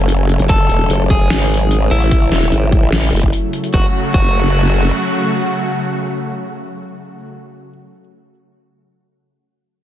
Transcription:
Already playing: supersaw synth C#3 F#3 A3 G#5, clean electric guitar A4
0.00 wobble bass F#1
0.09 closed hi-hat
0.29 closed hi-hat
0.39 wobble bass F#1, closed hi-hat
0.49 wobble bass F#1, clean electric guitar A4, kick, closed hi-hat
0.70 wobble bass E1, closed hi-hat
0.90 wobble bass F#1, closed hi-hat
1.10 clean electric guitar G#4, kick, open hi-hat
1.30 wobble bass G#1, snare, closed hi-hat
1.51 closed hi-hat
1.54 closed hi-hat
1.57 closed hi-hat
1.71 closed hi-hat
1.91 wobble bass A1, clean electric guitar E4, closed hi-hat
2.02 closed hi-hat
2.11 kick, closed hi-hat
2.32 wobble bass E1, snare, closed hi-hat
2.52 wobble bass G#1, closed hi-hat
2.72 kick, open hi-hat
2.83 wobble bass A1
2.92 snare, closed hi-hat
3.13 wobble bass F#1, closed hi-hat
3.16 closed hi-hat
3.20 kick, closed hi-hat
3.33 closed hi-hat
3.53 closed hi-hat
3.64 closed hi-hat
3.73 wobble bass F#1, supersaw synth C#3 F#3 A3 F#4, clean electric guitar F#4, kick
4.14 wobble bass F#1, clean electric guitar F#4, kick

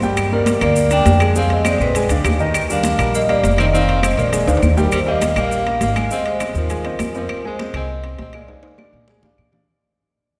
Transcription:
Already playing: upright bass G2
0.02 grand piano G3 G4 G5, high conga, maracas
0.17 high conga, high timbale, claves, maracas
0.32 tenor saxophone G3, grand piano A#3 A#4 D5, vibraphone A#4, high conga
0.46 high conga, high timbale, low timbale, maracas
0.61 upright bass D2, grand piano A#3 A#4 D5, tenor saxophone A#3, vibraphone D5, high conga, high timbale, claves, maracas
0.76 high conga, maracas
0.91 grand piano A#3 A#4 D5, tenor saxophone D4, vibraphone G5, high conga, high timbale, maracas
1.06 upright bass F2, high conga, high timbale, low timbale, maracas
1.20 grand piano G#3 G#4 G#5, high timbale, claves, maracas
1.35 grand piano G#3 G#4 G#5, tenor saxophone C4, vibraphone F5, high conga, maracas
1.50 tenor saxophone C4, vibraphone D#5, high conga, high timbale
1.65 tenor saxophone G#3, grand piano C4 C5 D#5, vibraphone D5, high conga, high timbale, low timbale, claves, maracas
1.79 upright bass A#1, tenor saxophone G#3, vibraphone B4, high conga, maracas
1.95 grand piano G#3 G#4 G#5, high conga, high timbale, maracas
2.09 upright bass D2, grand piano D4 D5 F5, high conga, high timbale, maracas
2.24 upright bass D#2, high conga, high timbale, low timbale, claves, maracas
2.40 grand piano D#3 D#4 D#5, maracas
2.54 high conga, high timbale, claves, maracas
2.69 grand piano G3 G4 A#4, tenor saxophone D4, vibraphone F5, high conga, maracas
2.83 high conga, high timbale, low timbale, maracas
2.98 upright bass A#1, grand piano G3 G4 A#4, high conga, high timbale, claves, maracas
3.14 tenor saxophone A#3, vibraphone D#5, high conga, maracas
3.29 grand piano G3 G4 A#4, tenor saxophone A#3, vibraphone D5, high conga, high timbale
3.43 upright bass F1, high conga, high timbale, low timbale, maracas
3.58 grand piano D#3 D#4 D#5, tenor saxophone C4, vibraphone D#5, high timbale, claves, maracas
3.73 grand piano D#3 D#4 D#5, tenor saxophone C4, vibraphone F5, high conga, maracas
3.88 high conga, high timbale
4.02 grand piano G#3 G#4 C5, tenor saxophone C4, vibraphone D#5, high conga, high timbale, low timbale, claves, maracas
4.17 upright bass A#1, tenor saxophone A#3, vibraphone D5, high conga, maracas
4.32 grand piano G#3 G#4 G#5, high conga, high timbale, maracas
4.47 upright bass D2, grand piano D4 D5 F5, high conga, high timbale, maracas
4.57 high timbale
4.62 upright bass D#2, high conga, claves, maracas
4.77 grand piano G3 G4 G5, tenor saxophone G3, vibraphone A#4, low timbale, maracas
4.91 upright bass D#2, tenor saxophone G3, vibraphone C5, high conga, high timbale, claves, maracas
5.06 grand piano G3 G4 G5, tenor saxophone A#3, vibraphone D#5, high conga
5.21 grand piano A#3 A#4 D#5, high conga, high timbale, low timbale, maracas
5.36 upright bass A#1, grand piano G3 G4 G5, tenor saxophone A#3, vibraphone F5, high conga, high timbale, claves, maracas
5.51 high conga, maracas
5.66 grand piano A#3 A#4 D#5, high conga, high timbale
5.81 upright bass G#1, tenor saxophone A#3, vibraphone F5, high conga, high timbale, low timbale, maracas
5.96 grand piano G#3 G#4 G#5, high conga, high timbale, claves, maracas
6.11 grand piano G#3 G#4 G#5, tenor saxophone C4, vibraphone D#5, high conga, maracas
6.25 tenor saxophone G#3, vibraphone C5, high conga, high timbale
6.40 grand piano C4 C5 D#5, high conga, high timbale, low timbale, claves, maracas
6.54 upright bass D#2, tenor saxophone F3, vibraphone A#4, high conga, maracas
6.69 grand piano G#3 G#4 G#5, high conga, high timbale, maracas
6.85 grand piano C4 C5 D#5, high conga, high timbale
6.99 upright bass F2, high conga, high timbale, low timbale, claves, maracas
7.15 tenor saxophone F3, grand piano C4 C5 D#5, vibraphone A#4, high conga, maracas
7.29 high conga, high timbale, claves
7.45 grand piano G#3 G#4 G#5, tenor saxophone G#3, vibraphone C5, high conga
7.59 grand piano C4 C5 D#5, high conga, high timbale, low timbale
7.74 upright bass C2, grand piano G#3 G#4 G#5, tenor saxophone C4, vibraphone D#5, high conga, high timbale, claves
7.89 high conga
8.04 grand piano C4 C5 D#5, high conga, high timbale
8.19 upright bass A#1, tenor saxophone C4, vibraphone D#5, high conga, high timbale, low timbale
8.33 grand piano G#3 G#4 G#5, tenor saxophone A#3, high conga, high timbale, claves
8.37 vibraphone D5
8.48 grand piano G#3 G#4 G#5, high conga, high timbale
8.63 high conga, high timbale
8.78 grand piano D4 D5 F5, high conga, low timbale, claves
8.93 upright bass A#2, high conga
9.08 grand piano G#3 G#4 G#5, high conga, low timbale
9.23 upright bass G#2, grand piano D4 D5 F5, low conga, low timbale
9.38 upright bass A#2, low conga, claves
9.52 grand piano D4 D5 F5, low conga, low timbale

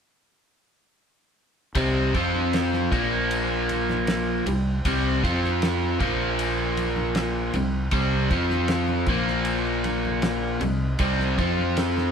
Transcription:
1.74 fingered electric bass C2, overdriven electric guitar C3 G3 C4, transistor combo organ G3 D#4 C5 D#5, kick, ride
2.14 fingered electric bass F2, overdriven electric guitar F3 C4 F4, transistor combo organ F3 C4 F5, kick, ride
2.34 high conga
2.53 snare, ride
2.73 snare, high conga
2.91 fingered electric bass A#1, overdriven electric guitar A#2 F3 A#3, transistor combo organ A#3, kick, ride, low conga
2.95 transistor combo organ A#4
3.31 ride
3.69 ride, high conga
3.89 snare, high conga, low conga
4.07 snare, ride
4.46 fingered electric bass C2, overdriven electric guitar C3 G3, transistor combo organ G3 D#4 C5 G5, ride, high conga, low conga
4.85 fingered electric bass C2, overdriven electric guitar C3 G3 C4, kick, ride
5.23 fingered electric bass F2, overdriven electric guitar F3 C4 F4, transistor combo organ F3 C4 F5, kick, ride
5.43 snare, high conga
5.62 snare, ride
5.82 high conga
5.99 fingered electric bass A#1, overdriven electric guitar A#2 F3 A#3, transistor combo organ F3 A#3 A#4, kick, ride, low conga
6.39 ride
6.77 ride, high conga
6.96 high conga, low conga
7.15 snare, ride
7.54 fingered electric bass C2, overdriven electric guitar C3 G3, transistor combo organ G3 D#4 C5 G5, ride, high conga, low conga
7.91 fingered electric bass C2, overdriven electric guitar C3 G3 C4, kick, ride
8.30 fingered electric bass F2, overdriven electric guitar F3 C4 F4, transistor combo organ F3 C4 F5, kick, ride
8.50 snare, high conga
8.68 snare, ride
8.88 high conga
9.06 fingered electric bass A#1, overdriven electric guitar A#2 F3 A#3, transistor combo organ A#3 A#4, kick, ride, low conga
9.27 snare
9.45 ride
9.84 ride, high conga
10.05 high conga, low conga
10.22 snare, ride
10.61 fingered electric bass C2, overdriven electric guitar C3 G3, transistor combo organ G3 D#4 C5 D#5, ride, high conga, low conga
10.99 fingered electric bass C2, overdriven electric guitar C3 G3 C4, kick, ride
11.20 snare
11.38 fingered electric bass F2, overdriven electric guitar F3 C4 F4, transistor combo organ F3 C4 C5 F5, kick, ride
11.58 high conga
11.77 snare, ride
11.97 snare, high conga

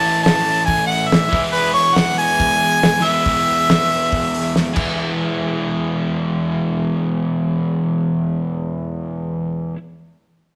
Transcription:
Already playing: overdriven electric guitar A2 E3 A3 C#4 E4, harmonica A5
0.05 open hi-hat
0.23 harmonica A5, snare, open hi-hat
0.48 open hi-hat
0.66 harmonica G#5, kick, open hi-hat
0.87 harmonica F#5
0.91 open hi-hat
1.08 harmonica E5
1.12 snare, open hi-hat
1.29 overdriven electric guitar E3 G#3 B3, kick
1.34 overdriven electric guitar E4, open hi-hat
1.52 harmonica B4, open hi-hat
1.74 harmonica C#5, open hi-hat
1.95 harmonica F#5, snare, open hi-hat
2.18 harmonica G#5, open hi-hat
2.40 kick, open hi-hat
2.63 open hi-hat
2.83 snare, open hi-hat
3.00 overdriven electric guitar E3 G#3
3.04 overdriven electric guitar B3 E4, harmonica E5, open hi-hat
3.25 kick, open hi-hat
3.48 open hi-hat
3.70 snare, open hi-hat
3.92 open hi-hat
4.12 kick, open hi-hat
4.34 open hi-hat
4.56 snare
4.74 overdriven electric guitar E3 G#3 B3 E4, kick, crash

